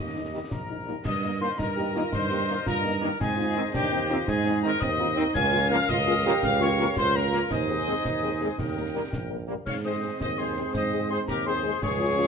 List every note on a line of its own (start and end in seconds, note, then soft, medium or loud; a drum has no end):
0.00 0.42 D#2 medium
0.00 0.74 A#3 medium
0.00 0.83 G4 medium
0.00 0.52 D#5 loud
0.00 0.87 D#5 medium
0.00 0.20 D#6 medium
0.14 0.21 G3 soft
0.14 0.21 A#3 medium
0.14 0.21 D#4 medium
0.32 0.39 D#3 medium
0.32 0.39 G3 soft
0.32 0.39 G3 medium
0.32 0.39 A#3 soft
0.32 0.39 D#4 medium
0.51 0.96 A#1 medium
0.51 1.01 A#4 medium
0.51 1.01 A#5 medium
0.51 concert bass drum medium
0.51 snare medium
0.68 0.75 G3 soft
0.68 0.75 A#3 soft
0.68 0.75 D#4 medium
0.86 0.93 D#3 medium
0.86 0.92 G3 medium
0.86 0.93 G3 medium
0.86 0.93 A#3 medium
0.86 0.93 D#4 medium
1.04 1.49 G2 medium
1.04 3.16 A#4 medium
1.04 1.38 D#5 loud
1.04 3.16 D#5 medium
1.04 1.38 D#6 loud
1.04 concert bass drum medium
1.04 snare medium
1.04 crash medium
1.23 1.29 G3 medium
1.23 1.29 A#3 medium
1.23 1.29 D#4 medium
1.40 1.47 D#3 medium
1.40 1.47 G3 medium
1.40 1.47 A#3 medium
1.40 1.47 D#4 medium
1.40 1.49 C5 loud
1.40 1.60 C6 loud
1.58 2.03 G2 medium
1.58 1.66 D#4 medium
1.58 2.09 A#4 loud
1.58 2.14 A#5 medium
1.58 concert bass drum medium
1.58 snare medium
1.76 1.82 G3 medium
1.76 1.83 A#3 medium
1.76 1.83 D#4 medium
1.76 1.93 G4 medium
1.94 2.00 D#3 medium
1.94 2.01 G3 medium
1.94 2.00 A#3 medium
1.94 2.01 A#3 medium
1.94 2.01 D#4 medium
1.94 2.14 F4 medium
1.94 snare medium
2.12 2.57 G2 medium
2.12 2.32 D#4 medium
2.12 2.63 C5 loud
2.12 2.66 C6 loud
2.12 concert bass drum medium
2.12 snare medium
2.30 2.37 G3 medium
2.30 2.37 A#3 medium
2.30 2.37 D#4 medium
2.30 2.47 G4 medium
2.30 snare medium
2.48 2.55 D#3 medium
2.48 2.54 G3 medium
2.48 2.54 A#3 medium
2.48 2.56 D#4 medium
2.48 2.54 D#4 medium
2.48 snare medium
2.66 3.11 G2 medium
2.66 2.85 F4 medium
2.66 3.16 A#4 loud
2.66 3.16 A#5 loud
2.66 concert bass drum medium
2.66 snare medium
2.83 2.90 G3 medium
2.83 2.90 A#3 medium
2.83 2.90 D#4 medium
2.83 3.01 D#4 medium
3.01 3.08 D#3 medium
3.01 3.09 G3 medium
3.01 3.08 A#3 medium
3.01 3.09 D4 medium
3.01 3.08 D#4 medium
3.20 3.65 G#2 medium
3.20 3.38 C4 medium
3.20 3.74 G#4 loud
3.20 5.32 C5 medium
3.20 5.32 D#5 medium
3.20 3.70 G#5 loud
3.20 concert bass drum medium
3.20 snare medium
3.20 crash soft
3.37 3.44 C4 medium
3.37 3.44 D#4 medium
3.37 3.58 F4 loud
3.55 3.62 D#3 medium
3.55 3.62 C4 medium
3.55 3.62 D#4 medium
3.55 3.73 D#4 medium
3.73 4.19 D#2 medium
3.73 3.90 D4 loud
3.73 4.24 G4 loud
3.73 4.24 G5 loud
3.73 concert bass drum medium
3.73 snare medium
3.91 3.98 C4 medium
3.91 4.00 C4 medium
3.91 3.98 D#4 medium
4.09 4.17 D#3 medium
4.09 4.16 C4 medium
4.09 4.16 D#4 medium
4.09 4.29 F4 medium
4.09 snare medium
4.28 4.72 G#2 loud
4.28 4.81 D#4 medium
4.28 4.63 G#4 loud
4.28 4.61 G#5 loud
4.28 concert bass drum medium
4.28 snare medium
4.45 4.51 C4 medium
4.45 4.51 D#4 medium
4.45 snare medium
4.62 4.70 D#3 medium
4.62 4.69 C4 medium
4.62 4.70 C4 medium
4.62 4.69 D#4 medium
4.62 4.81 A#4 loud
4.62 4.68 A#5 loud
4.62 snare medium
4.80 5.26 D#2 loud
4.80 4.90 C4 loud
4.80 5.35 D#5 loud
4.80 5.31 D#6 loud
4.80 concert bass drum medium
4.80 snare medium
4.99 5.06 C4 medium
4.99 5.06 D#4 medium
4.99 5.07 F4 medium
5.16 5.23 D#3 medium
5.16 5.23 C4 medium
5.16 5.23 C4 loud
5.16 5.23 D#4 medium
5.16 5.34 D#4 medium
5.34 5.80 C#2 loud
5.34 5.86 C#4 loud
5.34 7.34 A#4 loud
5.34 7.34 F5 loud
5.34 5.68 G#5 loud
5.34 5.68 G#6 loud
5.34 concert bass drum medium
5.34 snare medium
5.34 crash soft
5.52 5.59 A#3 medium
5.52 5.59 C#4 medium
5.52 5.59 F4 medium
5.69 5.77 F3 loud
5.69 5.76 A#3 medium
5.69 5.77 A#3 loud
5.69 5.76 C#4 medium
5.69 5.76 F4 medium
5.69 5.87 F5 loud
5.69 5.90 F6 loud
5.89 6.29 C#2 loud
5.89 5.98 F4 loud
5.89 6.39 D#5 loud
5.89 6.43 D#6 loud
5.89 concert bass drum medium
5.89 snare medium
6.06 6.13 A#3 medium
6.06 6.12 C#4 medium
6.06 6.12 F4 medium
6.06 6.15 G#4 loud
6.24 6.32 F3 loud
6.24 6.31 A#3 medium
6.24 6.32 A#3 loud
6.24 6.31 C#4 medium
6.24 6.31 F4 medium
6.24 6.98 G4 loud
6.24 snare medium
6.43 6.88 C#2 loud
6.43 6.60 F5 loud
6.43 6.49 F6 loud
6.43 concert bass drum medium
6.43 snare medium
6.60 6.67 A#3 medium
6.60 6.67 C#4 medium
6.60 6.67 F4 medium
6.60 6.94 C#5 loud
6.60 6.94 C#6 loud
6.60 snare medium
6.78 6.85 F3 medium
6.78 6.85 A#3 medium
6.78 6.85 C#4 medium
6.78 6.85 F4 medium
6.78 snare medium
6.96 7.42 C#2 loud
6.96 7.53 F4 loud
6.96 7.14 C5 loud
6.96 7.17 C6 loud
6.96 concert bass drum medium
6.96 snare medium
7.15 7.21 A#3 medium
7.15 7.21 C#4 medium
7.15 7.21 F4 medium
7.15 7.49 A#4 loud
7.15 7.50 A#5 loud
7.32 7.39 F3 medium
7.32 7.39 A#3 medium
7.32 7.39 C#4 medium
7.32 7.39 F4 medium
7.50 7.95 D#2 loud
7.50 9.40 D#4 medium
7.50 8.54 C5 medium
7.50 9.09 D#5 loud
7.50 8.55 G#5 medium
7.50 9.09 D#6 loud
7.50 concert bass drum medium
7.50 snare medium
7.50 crash soft
7.68 7.74 G#3 medium
7.68 7.75 C4 medium
7.68 7.74 G#4 medium
7.86 7.92 G#3 medium
7.86 7.94 G#3 medium
7.86 7.92 C4 medium
7.86 7.94 C4 medium
7.86 7.93 G#4 medium
8.04 8.49 D#2 medium
8.04 concert bass drum medium
8.04 snare medium
8.22 8.29 G#3 medium
8.22 8.29 C4 medium
8.22 8.29 G#4 medium
8.41 8.47 G#3 medium
8.41 8.48 G#3 medium
8.41 8.47 C4 medium
8.41 8.48 C4 medium
8.41 8.47 G#4 medium
8.41 snare medium
8.58 9.03 D#2 medium
8.58 9.48 A#4 medium
8.58 9.48 G5 medium
8.58 concert bass drum medium
8.58 snare medium
8.77 8.83 G3 medium
8.77 8.83 A#3 medium
8.77 8.83 A#4 medium
8.94 9.00 G3 medium
8.94 9.01 G3 medium
8.94 9.00 A#3 medium
8.94 9.01 A#3 medium
8.94 9.01 A#4 medium
9.13 9.58 A#1 medium
9.13 concert bass drum medium
9.13 snare medium
9.29 9.36 G3 medium
9.29 9.36 A#3 medium
9.29 9.36 A#4 medium
9.47 9.54 G3 medium
9.47 9.54 A#3 medium
9.47 9.54 A#4 medium
9.66 10.11 G#2 medium
9.66 11.78 G#3 medium
9.66 11.78 C4 medium
9.66 9.75 C#5 medium
9.66 9.75 F5 medium
9.66 9.72 F6 loud
9.66 concert bass drum medium
9.66 snare medium
9.66 crash medium
9.84 9.91 G#3 medium
9.84 9.91 C4 medium
9.84 9.91 G#4 medium
9.84 10.19 C5 medium
9.84 10.18 D#5 medium
9.84 10.18 D#6 medium
10.02 10.09 G#3 medium
10.02 10.09 C4 medium
10.02 10.08 G#4 medium
10.20 10.65 D#2 medium
10.20 10.29 C5 medium
10.20 10.38 D#5 loud
10.20 10.39 D#6 loud
10.20 concert bass drum medium
10.20 snare medium
10.38 10.45 G#3 medium
10.38 10.44 C4 medium
10.38 10.71 G#4 medium
10.38 10.45 G#4 medium
10.38 10.72 C5 medium
10.38 10.76 C6 medium
10.56 10.63 G#3 medium
10.56 10.63 C4 medium
10.56 10.62 G#4 medium
10.56 snare medium
10.74 11.19 G#2 medium
10.74 11.07 C5 medium
10.74 11.07 D#5 loud
10.74 11.09 D#6 medium
10.74 concert bass drum medium
10.74 snare medium
10.92 10.98 G#3 medium
10.92 10.98 C4 medium
10.92 10.98 G#4 medium
11.10 11.16 G#3 medium
11.10 11.16 C4 medium
11.10 11.16 G#4 medium
11.10 11.18 G#4 medium
11.10 11.19 C5 loud
11.10 11.27 C6 medium
11.27 11.73 D#2 medium
11.27 11.45 G4 medium
11.27 11.45 A#4 loud
11.27 11.33 A#5 medium
11.27 concert bass drum medium
11.27 snare medium
11.45 11.52 G#3 medium
11.45 11.52 C4 medium
11.45 11.52 G#4 medium
11.45 11.81 G#4 medium
11.45 11.79 C5 loud
11.45 11.79 C6 loud
11.63 11.69 G#3 medium
11.63 11.69 C4 medium
11.63 11.69 G#4 medium
11.82 12.27 C#2 loud
11.82 12.27 F3 medium
11.82 12.27 C#4 medium
11.82 12.27 G#4 loud
11.82 12.27 C#5 loud
11.82 12.27 C#6 loud
11.82 concert bass drum medium
11.82 snare medium
11.82 crash soft
11.99 12.06 G#3 medium
11.99 12.05 C#4 medium
11.99 12.05 F4 medium
12.17 12.24 G#3 medium
12.17 12.24 C#4 medium
12.17 12.24 F4 medium